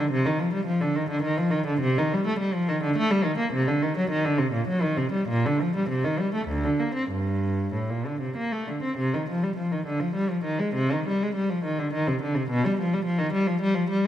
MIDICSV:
0, 0, Header, 1, 2, 480
1, 0, Start_track
1, 0, Key_signature, -2, "minor"
1, 0, Tempo, 555556
1, 97, Time_signature, 3, 2, 24, 8
1, 1059, Tempo, 574713
1, 3939, Tempo, 600000
1, 5379, Tempo, 626305
1, 7299, Tempo, 579151
1, 7300, Key_signature, -3, "minor"
1, 8259, Tempo, 604839
1, 9219, Tempo, 566572
1, 11527, End_track
2, 0, Start_track
2, 0, Title_t, "Cello"
2, 0, Program_c, 0, 42
2, 0, Note_on_c, 0, 50, 51
2, 92, Note_off_c, 0, 50, 0
2, 95, Note_on_c, 0, 48, 69
2, 211, Note_off_c, 0, 48, 0
2, 223, Note_on_c, 0, 51, 56
2, 336, Note_on_c, 0, 53, 52
2, 337, Note_off_c, 0, 51, 0
2, 453, Note_off_c, 0, 53, 0
2, 460, Note_on_c, 0, 55, 57
2, 566, Note_on_c, 0, 53, 59
2, 574, Note_off_c, 0, 55, 0
2, 688, Note_off_c, 0, 53, 0
2, 699, Note_on_c, 0, 50, 55
2, 818, Note_off_c, 0, 50, 0
2, 826, Note_on_c, 0, 51, 54
2, 943, Note_off_c, 0, 51, 0
2, 950, Note_on_c, 0, 50, 56
2, 1059, Note_on_c, 0, 51, 65
2, 1063, Note_off_c, 0, 50, 0
2, 1175, Note_off_c, 0, 51, 0
2, 1184, Note_on_c, 0, 53, 60
2, 1298, Note_on_c, 0, 51, 59
2, 1301, Note_off_c, 0, 53, 0
2, 1420, Note_off_c, 0, 51, 0
2, 1426, Note_on_c, 0, 50, 54
2, 1543, Note_on_c, 0, 48, 75
2, 1546, Note_off_c, 0, 50, 0
2, 1668, Note_off_c, 0, 48, 0
2, 1689, Note_on_c, 0, 51, 62
2, 1803, Note_off_c, 0, 51, 0
2, 1817, Note_on_c, 0, 55, 58
2, 1926, Note_off_c, 0, 55, 0
2, 1927, Note_on_c, 0, 57, 63
2, 2032, Note_on_c, 0, 55, 61
2, 2038, Note_off_c, 0, 57, 0
2, 2149, Note_off_c, 0, 55, 0
2, 2156, Note_on_c, 0, 53, 60
2, 2271, Note_off_c, 0, 53, 0
2, 2277, Note_on_c, 0, 51, 56
2, 2390, Note_off_c, 0, 51, 0
2, 2397, Note_on_c, 0, 50, 57
2, 2506, Note_off_c, 0, 50, 0
2, 2518, Note_on_c, 0, 57, 73
2, 2625, Note_off_c, 0, 57, 0
2, 2632, Note_on_c, 0, 55, 65
2, 2741, Note_on_c, 0, 51, 59
2, 2743, Note_off_c, 0, 55, 0
2, 2857, Note_off_c, 0, 51, 0
2, 2858, Note_on_c, 0, 58, 56
2, 2972, Note_off_c, 0, 58, 0
2, 2980, Note_on_c, 0, 48, 75
2, 3093, Note_off_c, 0, 48, 0
2, 3105, Note_on_c, 0, 50, 61
2, 3218, Note_off_c, 0, 50, 0
2, 3229, Note_on_c, 0, 51, 57
2, 3341, Note_off_c, 0, 51, 0
2, 3353, Note_on_c, 0, 54, 58
2, 3462, Note_off_c, 0, 54, 0
2, 3462, Note_on_c, 0, 51, 57
2, 3577, Note_off_c, 0, 51, 0
2, 3581, Note_on_c, 0, 50, 58
2, 3698, Note_on_c, 0, 48, 55
2, 3700, Note_off_c, 0, 50, 0
2, 3815, Note_on_c, 0, 46, 54
2, 3819, Note_off_c, 0, 48, 0
2, 3935, Note_off_c, 0, 46, 0
2, 3940, Note_on_c, 0, 54, 64
2, 4055, Note_off_c, 0, 54, 0
2, 4062, Note_on_c, 0, 51, 58
2, 4178, Note_on_c, 0, 48, 54
2, 4180, Note_off_c, 0, 51, 0
2, 4297, Note_on_c, 0, 55, 50
2, 4301, Note_off_c, 0, 48, 0
2, 4423, Note_off_c, 0, 55, 0
2, 4428, Note_on_c, 0, 46, 67
2, 4550, Note_off_c, 0, 46, 0
2, 4567, Note_on_c, 0, 50, 56
2, 4680, Note_off_c, 0, 50, 0
2, 4689, Note_on_c, 0, 53, 50
2, 4798, Note_off_c, 0, 53, 0
2, 4807, Note_on_c, 0, 55, 54
2, 4913, Note_off_c, 0, 55, 0
2, 4914, Note_on_c, 0, 48, 55
2, 5024, Note_off_c, 0, 48, 0
2, 5035, Note_on_c, 0, 51, 49
2, 5146, Note_off_c, 0, 51, 0
2, 5158, Note_on_c, 0, 55, 48
2, 5268, Note_off_c, 0, 55, 0
2, 5275, Note_on_c, 0, 57, 45
2, 5384, Note_on_c, 0, 38, 56
2, 5385, Note_off_c, 0, 57, 0
2, 5495, Note_off_c, 0, 38, 0
2, 5510, Note_on_c, 0, 50, 43
2, 5621, Note_off_c, 0, 50, 0
2, 5626, Note_on_c, 0, 58, 42
2, 5740, Note_off_c, 0, 58, 0
2, 5743, Note_on_c, 0, 60, 38
2, 5859, Note_off_c, 0, 60, 0
2, 5867, Note_on_c, 0, 43, 48
2, 6347, Note_off_c, 0, 43, 0
2, 6347, Note_on_c, 0, 45, 36
2, 6468, Note_off_c, 0, 45, 0
2, 6471, Note_on_c, 0, 46, 38
2, 6591, Note_off_c, 0, 46, 0
2, 6596, Note_on_c, 0, 50, 37
2, 6710, Note_on_c, 0, 48, 35
2, 6713, Note_off_c, 0, 50, 0
2, 6827, Note_off_c, 0, 48, 0
2, 6832, Note_on_c, 0, 58, 42
2, 6946, Note_on_c, 0, 57, 38
2, 6947, Note_off_c, 0, 58, 0
2, 7066, Note_on_c, 0, 50, 34
2, 7067, Note_off_c, 0, 57, 0
2, 7185, Note_off_c, 0, 50, 0
2, 7185, Note_on_c, 0, 60, 35
2, 7294, Note_on_c, 0, 48, 61
2, 7296, Note_off_c, 0, 60, 0
2, 7414, Note_off_c, 0, 48, 0
2, 7432, Note_on_c, 0, 51, 50
2, 7546, Note_off_c, 0, 51, 0
2, 7560, Note_on_c, 0, 53, 49
2, 7668, Note_off_c, 0, 53, 0
2, 7675, Note_on_c, 0, 55, 50
2, 7781, Note_on_c, 0, 53, 47
2, 7788, Note_off_c, 0, 55, 0
2, 7899, Note_off_c, 0, 53, 0
2, 7916, Note_on_c, 0, 51, 49
2, 8028, Note_off_c, 0, 51, 0
2, 8031, Note_on_c, 0, 50, 45
2, 8143, Note_off_c, 0, 50, 0
2, 8143, Note_on_c, 0, 53, 49
2, 8261, Note_off_c, 0, 53, 0
2, 8266, Note_on_c, 0, 55, 58
2, 8376, Note_off_c, 0, 55, 0
2, 8384, Note_on_c, 0, 53, 50
2, 8500, Note_off_c, 0, 53, 0
2, 8500, Note_on_c, 0, 51, 50
2, 8618, Note_off_c, 0, 51, 0
2, 8621, Note_on_c, 0, 56, 49
2, 8742, Note_on_c, 0, 48, 62
2, 8745, Note_off_c, 0, 56, 0
2, 8865, Note_off_c, 0, 48, 0
2, 8882, Note_on_c, 0, 51, 50
2, 8994, Note_off_c, 0, 51, 0
2, 9003, Note_on_c, 0, 55, 50
2, 9109, Note_off_c, 0, 55, 0
2, 9125, Note_on_c, 0, 56, 50
2, 9220, Note_on_c, 0, 55, 52
2, 9231, Note_off_c, 0, 56, 0
2, 9340, Note_off_c, 0, 55, 0
2, 9348, Note_on_c, 0, 53, 51
2, 9467, Note_off_c, 0, 53, 0
2, 9468, Note_on_c, 0, 51, 48
2, 9586, Note_off_c, 0, 51, 0
2, 9593, Note_on_c, 0, 50, 52
2, 9711, Note_off_c, 0, 50, 0
2, 9714, Note_on_c, 0, 51, 56
2, 9829, Note_off_c, 0, 51, 0
2, 9834, Note_on_c, 0, 48, 51
2, 9951, Note_off_c, 0, 48, 0
2, 9956, Note_on_c, 0, 50, 49
2, 10069, Note_on_c, 0, 48, 51
2, 10070, Note_off_c, 0, 50, 0
2, 10189, Note_off_c, 0, 48, 0
2, 10194, Note_on_c, 0, 47, 70
2, 10309, Note_off_c, 0, 47, 0
2, 10326, Note_on_c, 0, 55, 57
2, 10436, Note_off_c, 0, 55, 0
2, 10447, Note_on_c, 0, 53, 53
2, 10554, Note_off_c, 0, 53, 0
2, 10564, Note_on_c, 0, 55, 55
2, 10663, Note_on_c, 0, 53, 54
2, 10673, Note_off_c, 0, 55, 0
2, 10778, Note_off_c, 0, 53, 0
2, 10778, Note_on_c, 0, 51, 58
2, 10897, Note_off_c, 0, 51, 0
2, 10897, Note_on_c, 0, 55, 56
2, 11012, Note_off_c, 0, 55, 0
2, 11017, Note_on_c, 0, 53, 58
2, 11133, Note_off_c, 0, 53, 0
2, 11137, Note_on_c, 0, 55, 66
2, 11251, Note_off_c, 0, 55, 0
2, 11251, Note_on_c, 0, 53, 58
2, 11373, Note_off_c, 0, 53, 0
2, 11380, Note_on_c, 0, 55, 59
2, 11500, Note_off_c, 0, 55, 0
2, 11527, End_track
0, 0, End_of_file